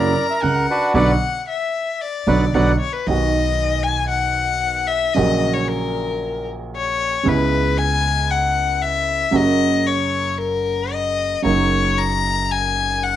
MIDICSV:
0, 0, Header, 1, 5, 480
1, 0, Start_track
1, 0, Key_signature, 2, "minor"
1, 0, Tempo, 528169
1, 868, Time_signature, 4, 2, 24, 8
1, 2795, Key_signature, 5, "major"
1, 3755, Tempo, 520382
1, 9035, Tempo, 530035
1, 12029, End_track
2, 0, Start_track
2, 0, Title_t, "Violin"
2, 0, Program_c, 0, 40
2, 0, Note_on_c, 0, 82, 79
2, 386, Note_on_c, 0, 78, 77
2, 400, Note_off_c, 0, 82, 0
2, 866, Note_off_c, 0, 78, 0
2, 870, Note_on_c, 0, 78, 75
2, 1315, Note_off_c, 0, 78, 0
2, 1354, Note_on_c, 0, 76, 71
2, 1827, Note_on_c, 0, 74, 68
2, 1841, Note_off_c, 0, 76, 0
2, 2306, Note_on_c, 0, 78, 61
2, 2320, Note_off_c, 0, 74, 0
2, 2539, Note_off_c, 0, 78, 0
2, 2544, Note_on_c, 0, 73, 75
2, 2660, Note_on_c, 0, 71, 70
2, 2674, Note_off_c, 0, 73, 0
2, 2786, Note_on_c, 0, 75, 90
2, 2799, Note_off_c, 0, 71, 0
2, 3483, Note_on_c, 0, 80, 83
2, 3497, Note_off_c, 0, 75, 0
2, 3711, Note_off_c, 0, 80, 0
2, 3717, Note_on_c, 0, 78, 90
2, 4441, Note_on_c, 0, 76, 91
2, 4455, Note_off_c, 0, 78, 0
2, 4680, Note_on_c, 0, 75, 86
2, 4693, Note_off_c, 0, 76, 0
2, 5052, Note_on_c, 0, 73, 74
2, 5066, Note_off_c, 0, 75, 0
2, 5177, Note_on_c, 0, 70, 76
2, 5191, Note_off_c, 0, 73, 0
2, 5910, Note_off_c, 0, 70, 0
2, 6179, Note_on_c, 0, 73, 87
2, 6660, Note_on_c, 0, 71, 84
2, 6674, Note_off_c, 0, 73, 0
2, 7119, Note_on_c, 0, 80, 101
2, 7133, Note_off_c, 0, 71, 0
2, 7603, Note_on_c, 0, 78, 84
2, 7617, Note_off_c, 0, 80, 0
2, 8078, Note_on_c, 0, 76, 88
2, 8092, Note_off_c, 0, 78, 0
2, 8575, Note_on_c, 0, 75, 96
2, 8589, Note_off_c, 0, 76, 0
2, 9046, Note_on_c, 0, 73, 83
2, 9059, Note_off_c, 0, 75, 0
2, 9506, Note_on_c, 0, 70, 82
2, 9520, Note_off_c, 0, 73, 0
2, 10005, Note_on_c, 0, 75, 86
2, 10019, Note_off_c, 0, 70, 0
2, 10473, Note_off_c, 0, 75, 0
2, 10479, Note_on_c, 0, 73, 90
2, 10961, Note_on_c, 0, 82, 101
2, 10974, Note_off_c, 0, 73, 0
2, 11442, Note_on_c, 0, 80, 92
2, 11455, Note_off_c, 0, 82, 0
2, 11914, Note_on_c, 0, 78, 92
2, 11927, Note_off_c, 0, 80, 0
2, 12029, Note_off_c, 0, 78, 0
2, 12029, End_track
3, 0, Start_track
3, 0, Title_t, "Bandoneon"
3, 0, Program_c, 1, 23
3, 0, Note_on_c, 1, 70, 57
3, 0, Note_on_c, 1, 74, 76
3, 240, Note_off_c, 1, 74, 0
3, 277, Note_on_c, 1, 76, 65
3, 329, Note_off_c, 1, 76, 0
3, 388, Note_on_c, 1, 78, 74
3, 496, Note_off_c, 1, 78, 0
3, 604, Note_off_c, 1, 70, 0
3, 639, Note_on_c, 1, 62, 45
3, 641, Note_on_c, 1, 71, 61
3, 645, Note_on_c, 1, 66, 47
3, 847, Note_off_c, 1, 71, 0
3, 857, Note_off_c, 1, 62, 0
3, 860, Note_off_c, 1, 66, 0
3, 860, Note_on_c, 1, 71, 80
3, 860, Note_on_c, 1, 74, 86
3, 861, Note_on_c, 1, 78, 84
3, 1017, Note_off_c, 1, 71, 0
3, 1017, Note_off_c, 1, 74, 0
3, 1017, Note_off_c, 1, 78, 0
3, 2068, Note_on_c, 1, 74, 73
3, 2072, Note_on_c, 1, 71, 72
3, 2072, Note_on_c, 1, 78, 72
3, 2223, Note_off_c, 1, 74, 0
3, 2225, Note_off_c, 1, 71, 0
3, 2226, Note_off_c, 1, 78, 0
3, 2318, Note_on_c, 1, 74, 80
3, 2319, Note_on_c, 1, 78, 77
3, 2321, Note_on_c, 1, 71, 77
3, 2471, Note_off_c, 1, 74, 0
3, 2471, Note_off_c, 1, 78, 0
3, 2472, Note_off_c, 1, 71, 0
3, 12029, End_track
4, 0, Start_track
4, 0, Title_t, "Grand piano"
4, 0, Program_c, 2, 0
4, 0, Note_on_c, 2, 42, 78
4, 0, Note_on_c, 2, 49, 65
4, 0, Note_on_c, 2, 54, 78
4, 0, Note_on_c, 2, 58, 54
4, 0, Note_on_c, 2, 64, 70
4, 115, Note_off_c, 2, 49, 0
4, 117, Note_off_c, 2, 42, 0
4, 117, Note_off_c, 2, 54, 0
4, 117, Note_off_c, 2, 58, 0
4, 119, Note_off_c, 2, 64, 0
4, 386, Note_on_c, 2, 37, 49
4, 388, Note_on_c, 2, 49, 52
4, 588, Note_off_c, 2, 37, 0
4, 589, Note_off_c, 2, 49, 0
4, 860, Note_on_c, 2, 54, 85
4, 863, Note_on_c, 2, 47, 82
4, 866, Note_on_c, 2, 50, 85
4, 1017, Note_off_c, 2, 54, 0
4, 1018, Note_off_c, 2, 47, 0
4, 1020, Note_off_c, 2, 50, 0
4, 2066, Note_on_c, 2, 47, 77
4, 2069, Note_on_c, 2, 50, 70
4, 2071, Note_on_c, 2, 54, 74
4, 2222, Note_off_c, 2, 47, 0
4, 2224, Note_off_c, 2, 50, 0
4, 2225, Note_off_c, 2, 54, 0
4, 2313, Note_on_c, 2, 54, 75
4, 2314, Note_on_c, 2, 50, 75
4, 2317, Note_on_c, 2, 47, 81
4, 2468, Note_off_c, 2, 50, 0
4, 2468, Note_off_c, 2, 54, 0
4, 2470, Note_off_c, 2, 47, 0
4, 2784, Note_on_c, 2, 51, 51
4, 2792, Note_on_c, 2, 54, 46
4, 2799, Note_on_c, 2, 35, 56
4, 2800, Note_on_c, 2, 47, 59
4, 2803, Note_on_c, 2, 59, 45
4, 2814, Note_on_c, 2, 66, 57
4, 4613, Note_off_c, 2, 51, 0
4, 4617, Note_off_c, 2, 54, 0
4, 4621, Note_off_c, 2, 35, 0
4, 4621, Note_off_c, 2, 47, 0
4, 4623, Note_off_c, 2, 59, 0
4, 4628, Note_off_c, 2, 66, 0
4, 4690, Note_on_c, 2, 49, 52
4, 4700, Note_on_c, 2, 54, 48
4, 4706, Note_on_c, 2, 34, 61
4, 4708, Note_on_c, 2, 46, 61
4, 4711, Note_on_c, 2, 58, 51
4, 4721, Note_on_c, 2, 66, 61
4, 6530, Note_off_c, 2, 49, 0
4, 6535, Note_off_c, 2, 54, 0
4, 6538, Note_off_c, 2, 34, 0
4, 6539, Note_off_c, 2, 46, 0
4, 6541, Note_off_c, 2, 58, 0
4, 6546, Note_off_c, 2, 66, 0
4, 6616, Note_on_c, 2, 49, 58
4, 6626, Note_on_c, 2, 56, 50
4, 6629, Note_off_c, 2, 49, 0
4, 6636, Note_on_c, 2, 37, 67
4, 6640, Note_on_c, 2, 49, 64
4, 6640, Note_on_c, 2, 59, 47
4, 6655, Note_on_c, 2, 64, 65
4, 8449, Note_off_c, 2, 56, 0
4, 8454, Note_off_c, 2, 37, 0
4, 8456, Note_off_c, 2, 49, 0
4, 8457, Note_off_c, 2, 59, 0
4, 8464, Note_off_c, 2, 64, 0
4, 8532, Note_on_c, 2, 49, 56
4, 8543, Note_on_c, 2, 54, 64
4, 8548, Note_on_c, 2, 42, 60
4, 8553, Note_on_c, 2, 58, 47
4, 8560, Note_on_c, 2, 66, 60
4, 10375, Note_off_c, 2, 49, 0
4, 10383, Note_off_c, 2, 42, 0
4, 10384, Note_off_c, 2, 54, 0
4, 10385, Note_off_c, 2, 58, 0
4, 10389, Note_off_c, 2, 66, 0
4, 10453, Note_on_c, 2, 49, 48
4, 10463, Note_on_c, 2, 54, 62
4, 10474, Note_on_c, 2, 42, 65
4, 10478, Note_on_c, 2, 58, 49
4, 10489, Note_on_c, 2, 63, 56
4, 12029, Note_off_c, 2, 42, 0
4, 12029, Note_off_c, 2, 49, 0
4, 12029, Note_off_c, 2, 54, 0
4, 12029, Note_off_c, 2, 58, 0
4, 12029, Note_off_c, 2, 63, 0
4, 12029, End_track
5, 0, Start_track
5, 0, Title_t, "Upright bass"
5, 0, Program_c, 3, 32
5, 0, Note_on_c, 3, 30, 78
5, 116, Note_off_c, 3, 30, 0
5, 392, Note_on_c, 3, 37, 51
5, 591, Note_off_c, 3, 37, 0
5, 856, Note_on_c, 3, 35, 85
5, 1040, Note_off_c, 3, 35, 0
5, 2061, Note_on_c, 3, 35, 78
5, 2245, Note_off_c, 3, 35, 0
5, 2306, Note_on_c, 3, 35, 70
5, 2489, Note_off_c, 3, 35, 0
5, 2790, Note_on_c, 3, 35, 62
5, 4616, Note_off_c, 3, 35, 0
5, 4718, Note_on_c, 3, 34, 69
5, 6544, Note_off_c, 3, 34, 0
5, 6638, Note_on_c, 3, 37, 70
5, 8456, Note_off_c, 3, 37, 0
5, 8541, Note_on_c, 3, 30, 66
5, 10379, Note_off_c, 3, 30, 0
5, 10480, Note_on_c, 3, 30, 66
5, 12029, Note_off_c, 3, 30, 0
5, 12029, End_track
0, 0, End_of_file